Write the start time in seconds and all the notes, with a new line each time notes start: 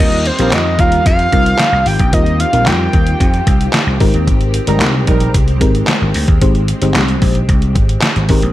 0.00 D#2 D#3 G3 C4 D#4 F4 G4 A#4 D#5
0.12 closed hi-hat
0.26 C5, closed hi-hat
0.39 A#1 G3 C4 D#4 F4 G4 A#4, closed hi-hat
0.52 F2 D#5, snare, clap, closed hi-hat
0.79 D#2 G3 F4 A#4 F5, kick, closed hi-hat
0.92 closed hi-hat
1.06 F2 F5, kick, closed hi-hat
1.19 closed hi-hat
1.32 C2 G3 C4 D#4 F4 A#4, kick, closed hi-hat
1.46 closed hi-hat
1.59 snare, clap, closed hi-hat
1.72 C2
1.86 G#1 G5, open hi-hat
1.99 A#1, kick, closed hi-hat
2.12 D#2 G3 C4 D#4 F4 A#4 D#5, kick, closed hi-hat
2.26 closed hi-hat
2.40 F5, closed hi-hat
2.52 A#1 F3 C4 D#4 F4 A#4, closed hi-hat
2.59 G3
2.66 F2 G5, snare, clap, closed hi-hat
2.93 D#2, kick, closed hi-hat
3.07 closed hi-hat
3.20 F2, kick, closed hi-hat
3.34 closed hi-hat
3.47 C2, kick, closed hi-hat
3.61 closed hi-hat
3.73 snare, clap, closed hi-hat
3.87 C2
4.00 G#1 G#3 C4 D#4 G4 A#4, kick, open hi-hat
4.14 D#2, closed hi-hat
4.27 G#1, kick, closed hi-hat
4.41 closed hi-hat
4.54 closed hi-hat
4.67 G1 G3 G#3 C4 D#4 G4 A#4, closed hi-hat
4.80 C2, snare, clap, closed hi-hat
5.07 A#1 G3 D#4 A#4, kick, closed hi-hat
5.20 closed hi-hat
5.34 C2, kick, closed hi-hat
5.48 closed hi-hat
5.61 G#1 G#3 C4 D#4 G4 A#4, kick, closed hi-hat
5.75 closed hi-hat
5.87 snare, clap, closed hi-hat
6.02 G#1
6.14 D2, open hi-hat
6.28 D#2, kick, closed hi-hat
6.41 G#1 G#3 C4 D#4 G4 C5, kick, closed hi-hat
6.55 closed hi-hat
6.68 closed hi-hat
6.81 G1 G#3 C4 D#4 G4 C5, closed hi-hat
6.94 C2, snare, clap, closed hi-hat
7.08 closed hi-hat
7.22 A#1, kick, open hi-hat
7.35 closed hi-hat
7.49 C2, kick, closed hi-hat
7.62 closed hi-hat
7.75 G#1, kick, closed hi-hat
7.89 closed hi-hat
8.02 snare, clap, closed hi-hat
8.16 G#1, closed hi-hat
8.29 G#1 G#3 C4 D#4 G4 A#4, kick, open hi-hat
8.42 A#1, closed hi-hat